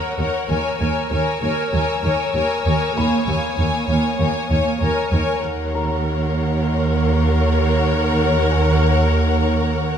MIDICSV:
0, 0, Header, 1, 8, 480
1, 0, Start_track
1, 0, Key_signature, -6, "minor"
1, 0, Tempo, 618557
1, 378, Time_signature, 4, 2, 24, 8
1, 7744, End_track
2, 0, Start_track
2, 0, Title_t, "Violin section"
2, 0, Program_c, 0, 48
2, 0, Note_on_c, 0, 87, 29
2, 0, Note_on_c, 0, 88, 29
2, 102, Note_off_c, 0, 88, 0
2, 115, Note_off_c, 0, 87, 0
2, 374, Note_on_c, 0, 85, 36
2, 376, Note_on_c, 0, 88, 36
2, 863, Note_on_c, 0, 87, 35
2, 2986, Note_off_c, 0, 88, 0
2, 3945, Note_off_c, 0, 85, 0
2, 3949, Note_off_c, 0, 87, 0
2, 4205, Note_on_c, 0, 82, 40
2, 4209, Note_on_c, 0, 84, 43
2, 5177, Note_on_c, 0, 85, 39
2, 7140, Note_off_c, 0, 85, 0
2, 7140, Note_on_c, 0, 86, 39
2, 7303, Note_off_c, 0, 84, 0
2, 7744, Note_off_c, 0, 82, 0
2, 7744, Note_off_c, 0, 86, 0
2, 7744, End_track
3, 0, Start_track
3, 0, Title_t, "Grand piano"
3, 0, Program_c, 1, 0
3, 0, Control_c, 1, 64, 127
3, 391, Control_c, 1, 64, 0
3, 508, Control_c, 1, 64, 127
3, 2309, Note_on_c, 1, 83, 41
3, 3712, Note_off_c, 1, 83, 0
3, 4234, Control_c, 1, 64, 0
3, 4363, Control_c, 1, 64, 127
3, 4459, Note_on_c, 1, 82, 44
3, 5867, Note_off_c, 1, 82, 0
3, 6611, Note_on_c, 1, 80, 35
3, 7744, Note_off_c, 1, 80, 0
3, 7744, End_track
4, 0, Start_track
4, 0, Title_t, "Violin section"
4, 0, Program_c, 2, 48
4, 0, Note_on_c, 2, 78, 37
4, 137, Note_off_c, 2, 78, 0
4, 152, Note_on_c, 2, 78, 42
4, 380, Note_off_c, 2, 78, 0
4, 390, Note_on_c, 2, 80, 43
4, 619, Note_off_c, 2, 80, 0
4, 628, Note_on_c, 2, 80, 41
4, 858, Note_off_c, 2, 80, 0
4, 869, Note_on_c, 2, 80, 43
4, 1097, Note_off_c, 2, 80, 0
4, 1106, Note_on_c, 2, 80, 44
4, 1338, Note_off_c, 2, 80, 0
4, 1352, Note_on_c, 2, 80, 42
4, 1580, Note_off_c, 2, 80, 0
4, 1595, Note_on_c, 2, 80, 43
4, 1819, Note_off_c, 2, 80, 0
4, 1829, Note_on_c, 2, 80, 45
4, 2052, Note_off_c, 2, 80, 0
4, 2061, Note_on_c, 2, 80, 47
4, 2295, Note_off_c, 2, 80, 0
4, 2303, Note_on_c, 2, 80, 46
4, 2530, Note_off_c, 2, 80, 0
4, 2539, Note_on_c, 2, 80, 47
4, 2771, Note_off_c, 2, 80, 0
4, 2780, Note_on_c, 2, 80, 47
4, 3011, Note_off_c, 2, 80, 0
4, 3021, Note_on_c, 2, 80, 47
4, 3255, Note_off_c, 2, 80, 0
4, 3270, Note_on_c, 2, 80, 50
4, 3493, Note_off_c, 2, 80, 0
4, 3503, Note_on_c, 2, 80, 41
4, 3729, Note_off_c, 2, 80, 0
4, 3738, Note_on_c, 2, 80, 46
4, 3972, Note_off_c, 2, 80, 0
4, 3981, Note_on_c, 2, 80, 46
4, 4215, Note_off_c, 2, 80, 0
4, 4227, Note_on_c, 2, 78, 55
4, 7744, Note_off_c, 2, 78, 0
4, 7744, End_track
5, 0, Start_track
5, 0, Title_t, "Violin section"
5, 0, Program_c, 3, 48
5, 0, Note_on_c, 3, 73, 37
5, 137, Note_off_c, 3, 73, 0
5, 149, Note_on_c, 3, 73, 43
5, 370, Note_off_c, 3, 73, 0
5, 379, Note_on_c, 3, 73, 43
5, 614, Note_off_c, 3, 73, 0
5, 630, Note_on_c, 3, 73, 35
5, 856, Note_off_c, 3, 73, 0
5, 866, Note_on_c, 3, 73, 37
5, 1091, Note_off_c, 3, 73, 0
5, 1100, Note_on_c, 3, 73, 37
5, 1324, Note_off_c, 3, 73, 0
5, 1333, Note_on_c, 3, 73, 47
5, 1571, Note_off_c, 3, 73, 0
5, 1579, Note_on_c, 3, 73, 41
5, 1814, Note_off_c, 3, 73, 0
5, 1825, Note_on_c, 3, 73, 44
5, 2048, Note_off_c, 3, 73, 0
5, 2058, Note_on_c, 3, 73, 43
5, 2293, Note_off_c, 3, 73, 0
5, 2301, Note_on_c, 3, 73, 47
5, 2528, Note_off_c, 3, 73, 0
5, 2537, Note_on_c, 3, 73, 42
5, 2764, Note_off_c, 3, 73, 0
5, 2773, Note_on_c, 3, 73, 43
5, 3006, Note_off_c, 3, 73, 0
5, 3015, Note_on_c, 3, 73, 43
5, 3236, Note_off_c, 3, 73, 0
5, 3246, Note_on_c, 3, 73, 47
5, 3484, Note_off_c, 3, 73, 0
5, 3494, Note_on_c, 3, 73, 42
5, 3724, Note_off_c, 3, 73, 0
5, 3733, Note_on_c, 3, 73, 45
5, 3963, Note_off_c, 3, 73, 0
5, 3972, Note_on_c, 3, 73, 47
5, 4205, Note_off_c, 3, 73, 0
5, 4215, Note_on_c, 3, 73, 53
5, 7744, Note_off_c, 3, 73, 0
5, 7744, End_track
6, 0, Start_track
6, 0, Title_t, "Viola section"
6, 0, Program_c, 4, 48
6, 0, Note_on_c, 4, 70, 39
6, 131, Note_off_c, 4, 70, 0
6, 141, Note_on_c, 4, 70, 37
6, 374, Note_off_c, 4, 70, 0
6, 387, Note_on_c, 4, 70, 42
6, 618, Note_off_c, 4, 70, 0
6, 631, Note_on_c, 4, 70, 39
6, 860, Note_off_c, 4, 70, 0
6, 870, Note_on_c, 4, 70, 43
6, 1099, Note_off_c, 4, 70, 0
6, 1111, Note_on_c, 4, 70, 44
6, 1337, Note_off_c, 4, 70, 0
6, 1346, Note_on_c, 4, 70, 41
6, 1578, Note_off_c, 4, 70, 0
6, 1587, Note_on_c, 4, 70, 44
6, 1813, Note_off_c, 4, 70, 0
6, 1823, Note_on_c, 4, 70, 43
6, 2056, Note_off_c, 4, 70, 0
6, 2074, Note_on_c, 4, 70, 43
6, 2301, Note_on_c, 4, 58, 49
6, 2302, Note_off_c, 4, 70, 0
6, 2528, Note_off_c, 4, 58, 0
6, 2537, Note_on_c, 4, 58, 43
6, 2773, Note_off_c, 4, 58, 0
6, 2781, Note_on_c, 4, 58, 45
6, 3008, Note_off_c, 4, 58, 0
6, 3018, Note_on_c, 4, 58, 46
6, 3241, Note_off_c, 4, 58, 0
6, 3250, Note_on_c, 4, 58, 45
6, 3480, Note_off_c, 4, 58, 0
6, 3490, Note_on_c, 4, 58, 49
6, 3729, Note_off_c, 4, 58, 0
6, 3740, Note_on_c, 4, 70, 43
6, 3962, Note_off_c, 4, 70, 0
6, 3972, Note_on_c, 4, 70, 44
6, 4207, Note_off_c, 4, 70, 0
6, 4217, Note_on_c, 4, 70, 58
6, 7744, Note_off_c, 4, 70, 0
6, 7744, End_track
7, 0, Start_track
7, 0, Title_t, "Cello section"
7, 0, Program_c, 5, 48
7, 143, Note_on_c, 5, 39, 42
7, 205, Note_off_c, 5, 39, 0
7, 379, Note_on_c, 5, 39, 50
7, 441, Note_off_c, 5, 39, 0
7, 617, Note_on_c, 5, 39, 44
7, 679, Note_off_c, 5, 39, 0
7, 858, Note_on_c, 5, 39, 47
7, 920, Note_off_c, 5, 39, 0
7, 1103, Note_on_c, 5, 39, 44
7, 1165, Note_off_c, 5, 39, 0
7, 1340, Note_on_c, 5, 39, 49
7, 1402, Note_off_c, 5, 39, 0
7, 1582, Note_on_c, 5, 39, 50
7, 1644, Note_off_c, 5, 39, 0
7, 1815, Note_on_c, 5, 39, 48
7, 1877, Note_off_c, 5, 39, 0
7, 2057, Note_on_c, 5, 39, 49
7, 2119, Note_off_c, 5, 39, 0
7, 2298, Note_on_c, 5, 39, 55
7, 2360, Note_off_c, 5, 39, 0
7, 2541, Note_on_c, 5, 39, 50
7, 2603, Note_off_c, 5, 39, 0
7, 2778, Note_on_c, 5, 39, 52
7, 2840, Note_off_c, 5, 39, 0
7, 3018, Note_on_c, 5, 39, 49
7, 3080, Note_off_c, 5, 39, 0
7, 3254, Note_on_c, 5, 39, 53
7, 3316, Note_off_c, 5, 39, 0
7, 3492, Note_on_c, 5, 39, 50
7, 3554, Note_off_c, 5, 39, 0
7, 3736, Note_on_c, 5, 39, 48
7, 3798, Note_off_c, 5, 39, 0
7, 3971, Note_on_c, 5, 39, 52
7, 4033, Note_off_c, 5, 39, 0
7, 4211, Note_on_c, 5, 39, 58
7, 7744, Note_off_c, 5, 39, 0
7, 7744, End_track
8, 0, Start_track
8, 0, Title_t, "Double bass section"
8, 0, Program_c, 6, 48
8, 142, Note_on_c, 6, 39, 43
8, 204, Note_off_c, 6, 39, 0
8, 384, Note_on_c, 6, 39, 47
8, 446, Note_off_c, 6, 39, 0
8, 626, Note_on_c, 6, 39, 45
8, 688, Note_off_c, 6, 39, 0
8, 861, Note_on_c, 6, 39, 40
8, 923, Note_off_c, 6, 39, 0
8, 1103, Note_on_c, 6, 39, 42
8, 1165, Note_off_c, 6, 39, 0
8, 1344, Note_on_c, 6, 39, 47
8, 1407, Note_off_c, 6, 39, 0
8, 1583, Note_on_c, 6, 39, 42
8, 1645, Note_off_c, 6, 39, 0
8, 1821, Note_on_c, 6, 39, 51
8, 1883, Note_off_c, 6, 39, 0
8, 2057, Note_on_c, 6, 39, 47
8, 2120, Note_off_c, 6, 39, 0
8, 2302, Note_on_c, 6, 39, 50
8, 2364, Note_off_c, 6, 39, 0
8, 2544, Note_on_c, 6, 39, 50
8, 2606, Note_off_c, 6, 39, 0
8, 2782, Note_on_c, 6, 39, 45
8, 2844, Note_off_c, 6, 39, 0
8, 3015, Note_on_c, 6, 39, 45
8, 3077, Note_off_c, 6, 39, 0
8, 3257, Note_on_c, 6, 39, 57
8, 3319, Note_off_c, 6, 39, 0
8, 3498, Note_on_c, 6, 39, 51
8, 3560, Note_off_c, 6, 39, 0
8, 3735, Note_on_c, 6, 39, 49
8, 3797, Note_off_c, 6, 39, 0
8, 3980, Note_on_c, 6, 39, 49
8, 4042, Note_off_c, 6, 39, 0
8, 4216, Note_on_c, 6, 39, 54
8, 7744, Note_off_c, 6, 39, 0
8, 7744, End_track
0, 0, End_of_file